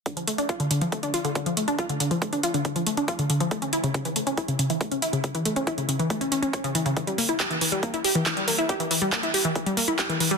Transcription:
<<
  \new Staff \with { instrumentName = "Synth arpeggio sound" } { \clef bass \time 4/4 \key d \minor \tempo 4 = 139 d16 f16 a16 d'16 f'16 d16 d16 f16 a16 d'16 f'16 d16 d16 f16 a16 d'16 | f'16 d16 d16 f16 a16 d'16 f'16 d16 d16 f16 a16 d'16 f'16 d16 d16 f16 | a16 cis'16 e'16 cis16 cis16 e16 a16 cis'16 e'16 cis16 cis16 e16 a16 cis'16 e'16 cis16 | cis16 e16 a16 cis'16 e'16 cis16 cis16 e16 a16 cis'16 cis'16 cis'16 cis''16 cis16 e16 cis16 |
e16 g16 bes16 e'16 g'16 e16 e16 g16 bes16 e'16 g'16 e16 e16 g16 bes16 e'16 | g'16 e16 e16 g16 bes16 e'16 g'16 e16 e16 g16 bes16 e'16 g'16 e16 e16 g16 | }
  \new DrumStaff \with { instrumentName = "Drums" } \drummode { \time 4/4 <hh bd>16 hh16 hh16 hh16 <hh bd>16 hh16 hh16 hh16 <hh bd>16 hh16 hh16 hh16 <hh bd>16 hh16 hh16 hh16 | <hh bd>16 hh16 hh16 hh16 <hh bd>16 hh16 hh16 hh16 <hh bd>16 hh16 hh16 hh16 <hh bd>16 hh16 hh16 hh16 | <hh bd>16 hh16 hh16 hh16 <hh bd>16 hh16 hh16 hh16 <hh bd>16 hh16 hh16 hh16 <hh bd>16 hh16 hh16 hh16 | <hh bd>16 hh16 hh16 hh16 <hh bd>16 hh16 hh16 hh16 <hh bd>16 hh16 hh16 hh16 <hh bd>16 hh16 hh16 hh16 |
<hh bd>16 hh16 hho16 hh16 <hc hh bd>16 hh16 hho16 hh16 <hh bd>16 hh16 hho16 hh16 <hc hh bd>16 hh16 hho16 hh16 | <hh bd>16 hh16 hho16 hh16 <hc hh bd>16 hh16 hho16 hh16 <hh bd>16 hh16 hho16 hh16 <hc hh bd>16 hh16 hho16 hh16 | }
>>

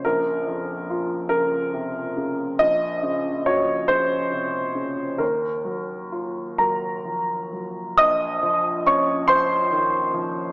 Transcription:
<<
  \new Staff \with { instrumentName = "Grand piano" } { \time 6/8 \key bes \minor \tempo 4. = 46 bes'4. bes'4. | ees''4 des''8 c''4. | bes'4. <bes' bes''>4. | <ees'' ees'''>4 <des'' des'''>8 <c'' c'''>4. | }
  \new Staff \with { instrumentName = "Grand piano" } { \clef bass \time 6/8 \key bes \minor <bes,, des>8 f,8 f'8 des8 c8 des8 | bes,,8 des8 ges'8 des8 c8 des8 | ees,8 ges8 f'8 ges8 f8 ges8 | bes,,8 f8 des'8 f8 ees8 f8 | }
>>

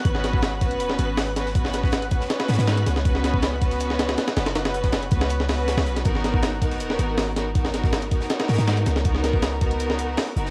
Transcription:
<<
  \new Staff \with { instrumentName = "Synth texture" } { \time 4/4 \key gis \minor \tempo 4 = 160 <fis'' fis'''>1~ | <fis'' fis'''>1~ | <fis'' fis'''>1~ | <fis'' fis'''>1 |
r1 | r1 | r1 | }
  \new Staff \with { instrumentName = "String section" } { \time 4/4 \key gis \minor <b cis' fis' b'>4. <b cis' fis' b'>2 <b cis' fis' b'>8 | <b cis' fis' b'>4. <b cis' fis' b'>2~ <b cis' fis' b'>8 | <b cis' fis' b'>4. <b cis' fis' b'>2 <b cis' fis' b'>8 | <b cis' fis' b'>4. <b cis' fis' b'>4 <b cis' fis' b'>4. |
<b dis' fis' ais'>4. <b dis' fis' ais'>2 <b dis' fis' ais'>8 | <b dis' fis' ais'>4. <b dis' fis' ais'>2~ <b dis' fis' ais'>8 | <b dis' fis' ais'>4. <b dis' fis' ais'>2 <b dis' fis' ais'>8 | }
  \new Staff \with { instrumentName = "808-style bass" } { \clef bass \time 4/4 \key gis \minor gis,,2 dis,,8 gis,,4.~ | gis,,4. r4 gis,16 gis,8. cis,8~ | cis,2. r8 fis,,8~ | fis,,4. cis,4.~ cis,16 cis,16 b,,8 |
gis,,2 dis,,8 gis,,4.~ | gis,,4. r4 gis,16 gis,8. cis,8~ | cis,2. r8 fis,,8 | }
  \new DrumStaff \with { instrumentName = "Drums" } \drummode { \time 4/4 <hh bd>16 sn16 <hh sn>16 bd16 <hh sn>8 <hh bd>16 hh16 hh16 sn16 hh8 <hh hho sn>8 <hh sn>16 sn16 | <hh bd>16 sn16 <hh sn>16 <bd sn>16 <hh sn>16 hh16 <hh bd>16 sn16 <hh sn>16 <hh sn>16 <hh sn>32 <hh sn>32 <hh sn>16 <hh sn>16 hh16 <hh sn>16 <hh sn>16 | <hh bd>16 sn16 <hh sn>16 bd16 <hh sn>8 <hh bd>16 <hh sn>16 hh16 sn16 <hh sn>16 <hh sn>16 <hh sn>16 <hh sn>16 <hh sn>16 <hh sn>16 | <hh sn>16 <hh sn>16 hh16 <hh bd sn>16 <hh sn>16 hh16 <hh bd>16 <hh sn>16 hh16 sn16 <hh hho sn>8 <hh sn>16 <hho sn>16 hh16 <hh sn>16 |
<hh bd>16 sn16 <hh sn>16 bd16 <hh sn>8 <hh bd>16 <hh sn>16 hh16 sn16 hh8 <hh hho sn>8 <hh sn>8 | <hh bd>16 sn16 <hh sn>16 <bd sn>16 <hh sn>16 hh16 <hh bd>16 sn16 <hh sn>16 <hh sn>16 <hh sn>32 <hh sn>32 <hh sn>16 <hh sn>16 hh16 <hh sn>16 <hh sn>16 | <hh bd>16 sn16 <hh sn>16 bd16 <hh sn>8 <hh bd>16 hh16 hh16 sn16 hh8 <hh hho sn>8 hh16 sn16 | }
>>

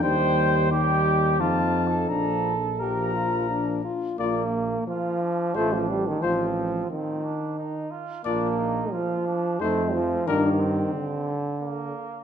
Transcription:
<<
  \new Staff \with { instrumentName = "Trumpet" } { \time 3/4 \key bes \major \tempo 4 = 89 g''4 g''4 a''4 | bes''8 r8 bes''4. r8 | d''8 r4. c''8 r8 | c''8 r2 r8 |
d''8 r4. c''8 r8 | bes'8 r2 r8 | }
  \new Staff \with { instrumentName = "French horn" } { \time 3/4 \key bes \major ees'4 ees'4 ees'4 | d'8 r8 g'8 f'8 d'8 f'8 | f'8 r4. f'8 r8 | f'8 r2 r8 |
f'8 r4. ees'8 r8 | d'8 r2 r8 | }
  \new Staff \with { instrumentName = "Flugelhorn" } { \time 3/4 \key bes \major c''4 g'4 \tuplet 3/2 { f'4 a'8 } | a'4 bes'4. r8 | r4 f'8 d'4. | c'4 c'8 d'8 ees'8 f'8 |
d'8 ees'8 f'8 d'8 c'4 | bes8 c'4 r8 bes4 | }
  \new Staff \with { instrumentName = "Trombone" } { \clef bass \time 3/4 \key bes \major g4 g4 f4 | f8 r8 f4. r8 | bes4 f4 a16 f16 g16 ees16 | f4 ees4. r8 |
bes4 f4 a8 f8 | ees4 d4. r8 | }
  \new Staff \with { instrumentName = "Tuba" } { \clef bass \time 3/4 \key bes \major ees,2 f,4 | bes,,2~ bes,,8 r8 | bes,,4 r4 a,,4 | a,,4 r2 |
bes,,4 r4 f,4 | g,4 r2 | }
>>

